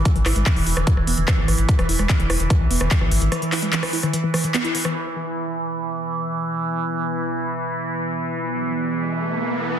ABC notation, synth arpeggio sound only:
X:1
M:4/4
L:1/16
Q:1/4=147
K:E
V:1 name="Synth arpeggio sound" clef=bass
E, E, E G, E, E, E D, E, E, B, D, E, E, E, D, | E, E, E G, E, E, E D, E, E, B, D, E, E, E, D, | E, E, E G, E, E, E D, E, E, E, E, B, E E, E, | z16 |
z16 | z16 |]